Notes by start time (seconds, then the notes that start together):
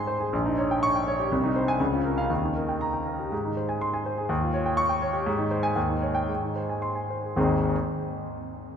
Already playing: G#2 D#4 C5 G#5 C6
0.07 C5
0.20 G#4
0.33 A#1
0.46 D#4
0.58 C#5
0.71 G5
0.83 C#6
0.96 G5
1.08 C#5
1.20 G4
1.32 C2
1.44 D#4
1.56 C5
1.68 G#5
1.80 C#2
1.93 F4
2.05 A#4
2.18 F5
2.30 D#2
2.43 D#4
2.56 A#4
2.69 G5
2.81 A#5
2.93 G5
3.07 A#4
3.19 G4
3.32 G#2
3.45 D#4
3.57 C5
3.69 G#5
3.81 C6
3.94 G#5
4.06 C5
4.18 G#4
4.29 D#2
4.41 F4
4.54 C#5
4.66 G5
4.77 C#6
4.89 G5
5.02 C#5
5.13 G4
5.26 G#2
5.38 D#4
5.51 C5
5.63 G#5
5.76 D#2
5.89 D#4
6.02 C#5
6.15 G5
6.28 G#2
6.42 D#4
6.56 C5
6.69 G#5
6.82 C6
6.95 G#5
7.10 C5
7.24 G#4
7.36 G#1 D#2 G#3 C4 D#4 G#4